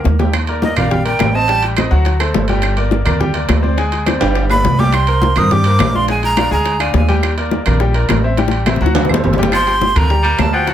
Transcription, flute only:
0.63 0.78 D#5 medium
0.77 1.06 F5 medium
1.06 1.37 G5 loud
1.35 1.63 A5 loud
4.51 4.81 B5 loud
4.80 4.96 D6 loud
4.94 5.39 C6 loud
5.38 5.54 D#6 loud
5.52 5.97 D6 loud
5.96 6.09 C6 loud
6.10 6.23 G#5 medium
6.25 6.50 A#5 loud
6.53 6.82 A#5 medium
6.80 6.94 G#5 medium
6.96 7.15 G#5 medium
9.55 9.99 C6 loud
9.98 10.42 A#5 loud
10.40 10.55 A5 medium
10.54 10.70 G5 medium
10.69 10.74 F#5 medium

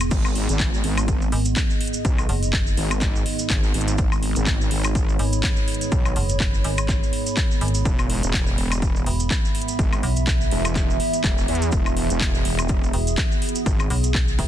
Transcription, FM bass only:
1.32 1.55 G#1 loud
2.29 2.76 F#1 loud
5.19 5.42 G#1 loud
6.16 6.63 F#1 loud
6.64 7.11 G#1 loud
7.61 7.84 G#1 loud
9.06 9.29 E1 loud
10.03 10.50 B1 loud
12.94 13.16 E1 loud
13.90 14.37 B1 loud
14.39 14.48 E1 loud

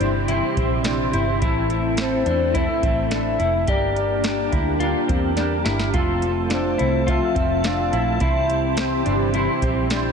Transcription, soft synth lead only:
2.01 2.58 C5 medium
2.56 3.12 E5 medium
3.12 3.71 E5 loud
3.69 4.82 D5 loud
6.53 7.10 C5 medium
7.09 7.68 E5 loud
7.66 8.21 F5 loud
8.21 9.02 E5 loud

